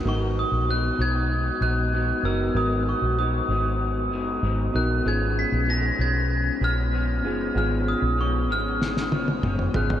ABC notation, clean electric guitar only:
X:1
M:4/4
L:1/8
Q:1/4=96
K:G#m
V:1 name="Clean electric guitar" clef=bass
[G,,F,B,D]2 [G,,F,B,D] [G,,F,B,D]2 [G,,F,B,D] [G,,F,B,D] [G,,F,B,D] | [G,,F,B,D]2 [G,,F,B,D] [G,,F,B,D]2 [G,,F,B,D] [G,,F,B,D] [G,,F,B,D] | [G,,^E,B,C]2 [G,,E,B,C] [G,,E,B,C]2 [G,,E,B,C] [G,,E,B,C] [G,,E,B,C] | [G,,^E,B,C]2 [G,,E,B,C] [G,,E,B,C]2 [G,,E,B,C] [G,,E,B,C] [G,,E,B,C] |]